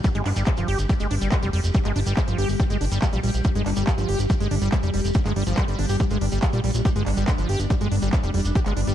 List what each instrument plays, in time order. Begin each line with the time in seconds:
Already playing: ambient pad G3 G4
0.04 acid bass G3, kick, closed hi-hat, shekere
0.15 analog synth bass G1, acid bass G#3, closed hi-hat, shekere
0.26 analog synth bass G1, acid bass D4, clap, open hi-hat
0.36 analog synth bass G1, acid bass G3, closed hi-hat, shekere
0.46 acid bass G#3, kick, clap, closed hi-hat, shekere
0.57 analog synth bass G1, acid bass F3, closed hi-hat, shekere
0.68 analog synth bass G1, acid bass G4, open hi-hat
0.78 analog synth bass G1, closed hi-hat, shekere
0.89 acid bass G3, kick, closed hi-hat, shekere
1.00 analog synth bass G1, acid bass G#3, closed hi-hat, shekere
1.11 analog synth bass G1, acid bass D4, open hi-hat
1.21 analog synth bass G1, acid bass G3, closed hi-hat, shekere
1.31 acid bass G#3, kick, clap, closed hi-hat, shekere
1.43 analog synth bass F1, acid bass G3, closed hi-hat, shekere
1.53 analog synth bass F1, acid bass G3, open hi-hat
1.64 analog synth bass F1, closed hi-hat, shekere
1.74 acid bass G3, kick, closed hi-hat, shekere
1.85 analog synth bass G1, acid bass G#3, clap, closed hi-hat, shekere
1.96 analog synth bass G1, acid bass D4, open hi-hat
2.06 analog synth bass G1, acid bass G3, closed hi-hat, shekere
2.17 acid bass G#3, kick, clap, closed hi-hat, shekere
2.28 analog synth bass G1, acid bass F3, closed hi-hat, shekere
2.38 analog synth bass G1, acid bass G4, open hi-hat
2.49 analog synth bass G1, open hi-hat, shekere
2.60 acid bass G3, kick, closed hi-hat, shekere
2.70 analog synth bass G1, acid bass G#3, closed hi-hat, shekere
2.81 analog synth bass G1, acid bass D4, open hi-hat
2.92 analog synth bass G1, acid bass G3, closed hi-hat, shekere
3.02 acid bass G#3, kick, clap, closed hi-hat, shekere
3.13 analog synth bass A#1, acid bass G3, closed hi-hat, shekere
3.23 analog synth bass A#1, acid bass G3, open hi-hat
3.34 analog synth bass A#1, closed hi-hat, shekere
3.44 acid bass G3, kick, closed hi-hat, shekere
3.55 analog synth bass G1, acid bass G#3, closed hi-hat, shekere
3.66 analog synth bass G1, acid bass D4, clap, open hi-hat
3.76 analog synth bass G1, acid bass G3, closed hi-hat, shekere
3.87 acid bass G#3, kick, clap, closed hi-hat, shekere
3.98 analog synth bass G1, acid bass F3, closed hi-hat, shekere
4.09 analog synth bass G1, acid bass G4, open hi-hat
4.19 analog synth bass G1, closed hi-hat, shekere
4.30 acid bass G3, kick, closed hi-hat, shekere
4.41 analog synth bass G1, acid bass G#3, closed hi-hat, shekere
4.51 analog synth bass G1, acid bass D4, open hi-hat
4.62 analog synth bass G1, acid bass G3, closed hi-hat, shekere
4.72 acid bass G#3, kick, clap, closed hi-hat, shekere
4.83 analog synth bass F1, acid bass G3, closed hi-hat, shekere
4.94 analog synth bass F1, acid bass G3, open hi-hat
5.04 analog synth bass F1, closed hi-hat, shekere
5.14 acid bass G3, kick, closed hi-hat, shekere
5.26 analog synth bass G1, acid bass G#3, clap, closed hi-hat, shekere
5.36 analog synth bass G1, acid bass G3, open hi-hat
5.47 analog synth bass G1, acid bass F3, closed hi-hat, shekere
5.57 acid bass G3, kick, clap, closed hi-hat, shekere
5.68 analog synth bass G1, acid bass G3, closed hi-hat, shekere
5.79 analog synth bass G1, acid bass D4, open hi-hat
5.89 analog synth bass G1, acid bass G4, open hi-hat, shekere
6.00 acid bass G3, ambient pad D4, kick, closed hi-hat, shekere
6.10 analog synth bass G1, acid bass G#3, closed hi-hat, shekere
6.21 analog synth bass G1, acid bass D4, open hi-hat
6.32 analog synth bass G1, acid bass G3, closed hi-hat, shekere
6.42 acid bass G#3, kick, clap, closed hi-hat, shekere
6.53 analog synth bass A#1, acid bass G3, closed hi-hat, shekere
6.64 analog synth bass A#1, acid bass G3, open hi-hat
6.74 analog synth bass A#1, closed hi-hat, shekere
6.85 acid bass G4, kick, closed hi-hat, shekere
6.96 analog synth bass G1, acid bass G#3, closed hi-hat, shekere
7.06 analog synth bass G1, acid bass D4, clap, open hi-hat
7.17 analog synth bass G1, acid bass G3, closed hi-hat, shekere
7.28 acid bass G#3, kick, clap, closed hi-hat, shekere
7.38 analog synth bass G1, acid bass F3, closed hi-hat, shekere
7.49 analog synth bass G1, acid bass G4, open hi-hat
7.59 analog synth bass G1, closed hi-hat, shekere
7.70 acid bass G3, kick, closed hi-hat, shekere
7.81 analog synth bass G1, acid bass G#3, closed hi-hat, shekere
7.92 analog synth bass G1, acid bass D4, open hi-hat
8.02 analog synth bass G1, acid bass G3, closed hi-hat, shekere
8.13 acid bass G#3, kick, clap, closed hi-hat, shekere
8.23 analog synth bass F1, acid bass G3, closed hi-hat, shekere
8.34 analog synth bass F1, acid bass G3, open hi-hat
8.45 analog synth bass F1, closed hi-hat, shekere
8.55 acid bass G4, kick, closed hi-hat, shekere
8.66 analog synth bass G1, acid bass G#3, clap, closed hi-hat, shekere
8.77 analog synth bass G1, acid bass D4, open hi-hat
8.87 analog synth bass G1, acid bass G3, closed hi-hat, shekere